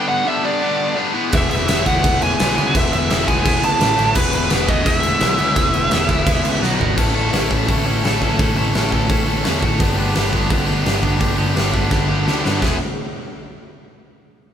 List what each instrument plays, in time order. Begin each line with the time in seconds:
Already playing: distorted electric guitar G2 D3 G3 B3 D4
0.09 lead electric guitar F#5
0.25 distorted electric guitar G2 D3 G3 B3 D4, lead electric guitar E5
0.44 distorted electric guitar G2 D3 G3 B3 D4, lead electric guitar D5
0.62 distorted electric guitar G2 D3 G3 B3 D4
0.96 distorted electric guitar G2 D3 G3 B3 D4
1.14 distorted electric guitar E3 G#3 B3 E4
1.31 picked electric bass E1, distorted electric guitar E3 G#3 B3 E4, lead electric guitar E5, kick, crash
1.50 picked electric bass E1, lead electric guitar E5, crash
1.67 picked electric bass E1, distorted electric guitar E3 G#3 B3 E4, snare, crash
1.86 picked electric bass E1, distorted electric guitar E3 G#3 B3 E4, lead electric guitar F#5, kick, crash
2.03 picked electric bass E1, distorted electric guitar E3 G#3 B3 E4, kick, crash
2.22 lead electric guitar G#5, crash
2.39 picked electric bass B1, distorted electric guitar E3 G#3 B3 E4, snare, crash
2.57 picked electric bass C#2, distorted electric guitar E3 G#3 B3 E4, crash
2.73 picked electric bass E1, distorted electric guitar E3 G#3 B3 E4, lead electric guitar E5, kick, crash
2.93 picked electric bass E1, lead electric guitar E5, crash
3.10 picked electric bass E1, distorted electric guitar E3 G#3 B3 E4, snare, crash
3.27 picked electric bass E1, distorted electric guitar E3 G#3 B3 E4, lead electric guitar G#5, kick, crash
3.45 picked electric bass E1, distorted electric guitar E3 G#3 B3 E4, kick, crash
3.62 picked electric bass C#2, lead electric guitar A5, crash
3.80 picked electric bass A1, distorted electric guitar A2 E3 A3 E4, snare, crash
3.96 picked electric bass A1, distorted electric guitar A2 E3 A3 E4, crash
4.14 picked electric bass E1, distorted electric guitar E3 G#3 B3 E4, lead electric guitar B4, kick, crash
4.33 picked electric bass E1, lead electric guitar B4, crash
4.48 distorted electric guitar E3 G#3 B3 E4, snare, crash
4.53 picked electric bass E1
4.67 picked electric bass E1, distorted electric guitar E3 G#3 B3 E4, lead electric guitar D#5, kick, crash
4.84 picked electric bass E1, distorted electric guitar E3 G#3 B3 E4, lead electric guitar E5, kick, crash
5.03 crash
5.20 picked electric bass B1, distorted electric guitar E3 G#3 B3 E4, snare, crash
5.38 picked electric bass C#2, distorted electric guitar E3 G#3 B3 E4, crash
5.56 picked electric bass E1, distorted electric guitar E3 G#3 B3 E4, kick, crash
5.73 picked electric bass E1, crash
5.91 picked electric bass E1, distorted electric guitar E3 G#3 B3 E4, snare, crash
6.09 picked electric bass E1, distorted electric guitar E3 G#3 B3 E4, kick, crash
6.25 picked electric bass E1, distorted electric guitar E3 G#3 B3 E4, kick, crash
6.45 picked electric bass C#2, crash
6.61 picked electric bass B1, distorted electric guitar B2 F#3 B3 F#4, snare
6.78 picked electric bass G#1, distorted electric guitar B2 F#3 B3 F#4, floor tom
6.96 picked electric bass A1, distorted electric guitar A2 E3 A3 C#4 E4 A4, kick, crash
7.14 distorted electric guitar A2 E3 A3 C#4 E4 A4
7.32 picked electric bass A1, distorted electric guitar A2 E3 A3 C#4 E4 A4, snare, open hi-hat
7.49 picked electric bass A1, distorted electric guitar A2 E3 A3 C#4 E4 A4, kick
7.67 picked electric bass A1, distorted electric guitar A2 E3 A3 C#4 E4 A4, kick, open hi-hat
7.85 distorted electric guitar A2 E3 A3 C#4 E4 A4
8.03 picked electric bass A1, distorted electric guitar A2 E3 A3 C#4 E4 A4, snare, open hi-hat
8.21 picked electric bass A1, distorted electric guitar A2 E3 A3 C#4 E4 A4, kick
8.39 picked electric bass A1, distorted electric guitar A2 E3 A3 C#4 E4 A4, kick, open hi-hat
8.56 picked electric bass A1, distorted electric guitar A2 E3 A3 C#4 E4 A4
8.74 picked electric bass A1, distorted electric guitar A2 E3 A3 C#4 E4 A4, snare, open hi-hat
8.92 picked electric bass A1, distorted electric guitar A2 E3 A3 C#4 E4 A4, kick
9.09 picked electric bass A1, distorted electric guitar A2 E3 A3 C#4 E4 A4, kick, open hi-hat
9.27 distorted electric guitar A2 E3 A3 C#4 E4 A4
9.44 picked electric bass E2, distorted electric guitar A2 E3 A3 C#4 E4 A4, snare, open hi-hat
9.63 picked electric bass A2, distorted electric guitar A2 E3 A3 C#4 E4 A4, kick
9.80 picked electric bass G1, distorted electric guitar G2 D3 G3 B3 D4 G4, kick, open hi-hat
9.96 distorted electric guitar G2 D3 G3 B3 D4 G4
10.14 picked electric bass G1, distorted electric guitar G2 D3 G3 B3 D4 G4, snare, open hi-hat
10.31 picked electric bass G1, distorted electric guitar G2 D3 G3 B3 D4 G4, kick
10.49 picked electric bass G1, distorted electric guitar G2 D3 G3 B3 D4 G4, kick, open hi-hat
10.65 distorted electric guitar G2 D3 G3 B3 D4 G4
10.82 picked electric bass G1, distorted electric guitar G2 D3 G3 B3 D4 G4, open hi-hat
10.87 snare
11.01 picked electric bass G1, distorted electric guitar G2 D3 G3 B3 D4 G4, kick
11.18 picked electric bass G1, distorted electric guitar G2 D3 G3 B3 D4 G4, kick, open hi-hat
11.37 picked electric bass G1, distorted electric guitar G2 D3 G3 B3 D4 G4
11.54 picked electric bass G1, distorted electric guitar G2 D3 G3 B3 D4 G4, snare, open hi-hat
11.72 picked electric bass G1, distorted electric guitar G2 D3 G3 B3 D4 G4, kick
11.90 picked electric bass G1, distorted electric guitar G2 D3 G3 B3 D4 G4, kick, snare
12.07 distorted electric guitar G2 D3 G3 B3 D4 G4
12.25 picked electric bass D2, distorted electric guitar G2 D3 G3 B3 D4 G4, snare
12.43 distorted electric guitar G2 D3 G3 B3 D4 G4, picked electric bass G2, snare
12.60 picked electric bass E1, distorted electric guitar E3 G#3 B3 E4 G#4, kick, snare, splash